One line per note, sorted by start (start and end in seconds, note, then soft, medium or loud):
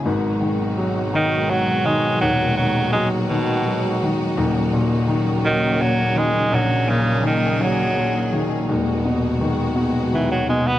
0.05 2.18 G#1 medium
0.05 2.18 G#2 medium
0.05 4.33 B2 medium
0.05 10.79 F#3 medium
0.05 4.33 G#3 medium
0.05 10.79 D#4 medium
0.05 6.47 F#4 medium
0.41 1.12 D#3 medium
0.77 1.48 F#3 medium
1.14 1.84 D#3 medium
1.14 1.52 D#3 loud
1.49 2.89 F#3 medium
1.49 1.87 F#3 loud
1.85 2.57 D#3 medium
1.85 2.21 G#3 loud
2.21 4.33 D#1 medium
2.21 4.33 D#2 medium
2.21 2.55 F#3 loud
2.57 3.29 D#3 medium
2.57 2.91 F#3 loud
2.93 3.64 F#3 medium
2.93 3.09 G#3 loud
3.29 4.06 B2 loud
3.29 4.01 D#3 medium
3.66 4.35 F#3 medium
4.02 4.37 D#3 medium
4.37 6.48 D#1 medium
4.37 6.48 D#2 medium
4.37 8.65 C#3 medium
4.37 8.65 A#3 medium
4.73 5.79 A#2 medium
5.08 6.14 D#3 medium
5.45 5.84 D#3 loud
5.45 6.84 F#3 medium
5.80 6.86 A#2 medium
5.80 6.19 F#3 loud
6.15 7.21 D#3 medium
6.15 6.56 G#3 loud
6.52 8.65 A#1 medium
6.52 6.91 F#3 loud
6.52 8.67 G#4 medium
6.87 7.95 A#2 medium
6.87 7.25 C#3 loud
7.23 8.31 D#3 medium
7.23 7.64 D#3 loud
7.60 8.65 F#3 medium
7.60 8.43 F#3 loud
7.96 8.66 A#2 medium
8.32 8.68 D#3 medium
8.68 10.79 D#1 medium
8.68 10.79 D#2 medium
8.68 10.79 B2 medium
8.68 10.79 G#3 medium
8.68 10.79 F#4 medium
9.05 9.74 B2 medium
9.41 10.11 D#3 medium
9.76 10.48 B2 medium
10.12 10.79 D#3 medium
10.12 10.30 E3 medium
10.32 10.48 F#3 loud
10.49 10.79 B2 medium
10.49 10.69 G#3 loud
10.67 10.79 B3 loud